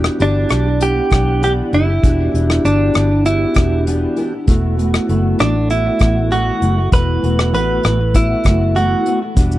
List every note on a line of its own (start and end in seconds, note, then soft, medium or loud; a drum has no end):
0.00 0.17 E3 medium
0.00 0.18 B3 medium
0.00 0.66 B3 medium
0.00 0.19 D4 medium
0.00 0.66 D4 medium
0.00 0.67 F#4 medium
0.00 0.20 G4 medium
0.00 0.67 G4 medium
0.04 cross-stick medium
0.19 0.44 G1 medium
0.19 0.47 E3 medium
0.19 0.49 B3 medium
0.19 0.50 D4 medium
0.19 0.84 D4 medium
0.19 0.51 G4 medium
0.19 closed hi-hat medium
0.49 0.99 B1 medium
0.49 0.95 E3 medium
0.49 0.96 B3 medium
0.49 0.95 D4 medium
0.49 cross-stick medium
0.49 closed hi-hat soft
0.53 0.93 G4 medium
0.79 1.88 B3 medium
0.79 1.89 D4 medium
0.79 1.89 G4 medium
0.79 1.43 G4 loud
0.79 1.89 F#5 medium
0.79 closed hi-hat medium
0.94 1.12 D4 soft
0.94 1.10 G4 soft
0.98 1.11 B3 soft
1.10 1.61 B1 medium
1.10 1.40 E3 soft
1.10 1.41 B3 soft
1.10 1.42 D4 medium
1.10 1.43 G4 medium
1.10 kick medium
1.10 cross-stick medium
1.10 closed hi-hat soft
1.42 1.70 E3 medium
1.42 1.72 B3 medium
1.42 1.73 D4 medium
1.42 1.52 G4 loud
1.42 1.74 G4 medium
1.42 closed hi-hat medium
1.71 1.97 F#1 medium
1.71 1.87 E3 medium
1.71 1.88 B3 medium
1.71 1.87 D4 medium
1.71 2.65 E4 medium
1.71 1.86 G4 medium
1.71 closed hi-hat soft
1.87 2.02 B3 soft
1.87 2.02 D4 soft
1.87 2.03 G4 soft
2.02 2.28 E1 medium
2.02 2.31 E3 medium
2.02 3.11 B3 medium
2.02 2.32 B3 medium
2.02 3.11 D4 medium
2.02 2.34 D4 medium
2.02 3.12 F#4 medium
2.02 2.34 G4 medium
2.02 3.12 G4 medium
2.02 kick loud
2.02 closed hi-hat medium
2.32 2.58 E1 medium
2.32 2.62 E3 medium
2.32 2.63 B3 medium
2.32 2.64 D4 medium
2.32 closed hi-hat medium
2.36 2.65 G4 medium
2.50 cross-stick medium
2.64 2.89 G1 medium
2.64 2.92 E3 medium
2.64 2.94 B3 medium
2.64 3.26 D4 medium
2.64 2.95 D4 medium
2.64 2.96 G4 medium
2.64 closed hi-hat medium
2.94 3.44 G1 medium
2.94 3.40 E3 medium
2.94 3.41 B3 medium
2.94 3.40 D4 medium
2.94 3.38 G4 medium
2.94 cross-stick medium
2.94 closed hi-hat soft
3.24 4.33 B3 medium
3.24 4.33 D4 medium
3.24 3.83 E4 medium
3.24 4.34 F#4 medium
3.24 4.34 G4 medium
3.24 closed hi-hat medium
3.39 3.56 B3 soft
3.39 3.56 D4 soft
3.39 3.55 G4 soft
3.54 4.05 E1 medium
3.54 3.85 E3 soft
3.54 3.86 B3 medium
3.54 3.86 D4 medium
3.54 kick medium
3.54 cross-stick medium
3.54 closed hi-hat medium
3.59 3.87 G4 medium
3.86 4.15 E3 medium
3.86 4.16 B3 medium
3.86 4.18 D4 medium
3.86 4.18 G4 medium
3.86 closed hi-hat medium
4.16 4.32 E3 medium
4.16 4.33 B3 medium
4.16 4.32 D4 medium
4.16 4.30 G4 medium
4.16 closed hi-hat soft
4.31 4.48 B3 soft
4.31 4.48 D4 soft
4.31 4.47 G4 medium
4.46 4.97 E1 loud
4.46 4.76 E3 medium
4.46 5.55 A3 medium
4.46 4.77 A3 medium
4.46 5.55 B3 medium
4.46 4.78 B3 medium
4.46 5.56 E4 medium
4.46 5.56 F#4 medium
4.46 4.79 F#4 medium
4.46 kick loud
4.46 closed hi-hat medium
4.77 5.07 E3 medium
4.77 5.08 A3 medium
4.77 5.08 B3 medium
4.77 5.09 F#4 medium
4.77 closed hi-hat soft
4.94 cross-stick medium
5.08 5.33 F#1 medium
5.08 5.37 E3 medium
5.08 5.38 A3 medium
5.08 5.39 B3 medium
5.08 5.40 F#4 medium
5.08 closed hi-hat medium
5.38 5.89 A1 medium
5.38 5.85 E3 medium
5.38 5.85 A3 medium
5.38 5.85 B3 medium
5.38 5.70 D4 medium
5.38 5.83 F#4 medium
5.38 cross-stick medium
5.38 closed hi-hat soft
5.69 6.77 A3 medium
5.69 6.78 B3 medium
5.69 6.78 E4 medium
5.69 6.33 E4 loud
5.69 6.79 F#4 medium
5.69 closed hi-hat medium
5.85 6.00 A3 soft
5.85 6.01 B3 soft
5.85 6.00 F#4 soft
5.99 6.50 A1 medium
5.99 6.16 E3 soft
5.99 6.16 A3 soft
5.99 6.15 B3 soft
5.99 kick medium
5.99 cross-stick medium
5.99 closed hi-hat soft
6.03 6.13 F#4 medium
6.15 6.30 A3 soft
6.15 6.31 B3 soft
6.15 6.31 F#4 soft
6.31 6.59 E3 medium
6.31 6.61 A3 medium
6.31 6.62 B3 medium
6.31 6.89 F#4 medium
6.31 6.63 F#4 medium
6.31 closed hi-hat medium
6.61 6.86 F#1 medium
6.61 6.77 E3 medium
6.61 6.77 A3 medium
6.61 6.77 B3 medium
6.61 6.75 F#4 medium
6.61 closed hi-hat soft
6.77 6.91 A3 soft
6.77 6.92 B3 soft
6.77 6.92 F#4 medium
6.91 7.17 E1 loud
6.91 7.20 E3 medium
6.91 8.00 A3 medium
6.91 7.22 A3 medium
6.91 8.00 B3 medium
6.91 7.23 B3 medium
6.91 8.00 E4 medium
6.91 8.01 F#4 medium
6.91 7.24 F#4 medium
6.91 7.53 B4 loud
6.91 kick loud
6.91 closed hi-hat medium
7.21 7.53 E1 medium
7.21 7.51 E3 medium
7.21 7.52 A3 medium
7.21 7.53 B3 medium
7.21 7.54 F#4 medium
7.21 closed hi-hat soft
7.39 cross-stick medium
7.52 7.78 A1 loud
7.52 7.81 E3 medium
7.52 7.83 A3 medium
7.52 7.84 B3 medium
7.52 7.85 F#4 medium
7.52 8.17 B4 loud
7.52 closed hi-hat medium
7.82 8.33 A1 medium
7.82 8.29 E3 medium
7.82 8.30 A3 medium
7.82 8.29 B3 medium
7.82 8.27 F#4 medium
7.82 cross-stick medium
7.82 closed hi-hat soft
8.13 9.22 A3 medium
8.13 9.22 B3 medium
8.13 9.23 E4 medium
8.13 8.78 E4 medium
8.13 9.23 F#4 medium
8.13 kick medium
8.13 closed hi-hat medium
8.29 8.44 A3 soft
8.29 8.45 B3 soft
8.29 8.45 F#4 soft
8.44 8.94 F#1 medium
8.44 8.74 E3 soft
8.44 8.75 A3 medium
8.44 8.76 B3 medium
8.44 8.77 F#4 medium
8.44 kick medium
8.44 cross-stick medium
8.44 closed hi-hat medium
8.75 9.04 E3 medium
8.75 9.06 A3 medium
8.75 9.06 B3 medium
8.75 9.19 F#4 medium
8.75 9.07 F#4 medium
8.75 closed hi-hat medium
9.05 9.21 E3 medium
9.05 9.22 A3 medium
9.05 9.21 B3 medium
9.05 9.19 F#4 medium
9.05 closed hi-hat soft
9.21 9.37 A3 soft
9.21 9.36 B3 soft
9.21 9.36 F#4 medium
9.34 9.59 E1 loud
9.34 9.59 E3 medium
9.34 9.59 G3 medium
9.34 9.59 B3 medium
9.34 9.59 D4 medium
9.34 9.59 F#4 medium
9.34 9.59 G4 medium
9.34 kick loud
9.34 closed hi-hat medium
9.34 shaker medium
9.52 shaker soft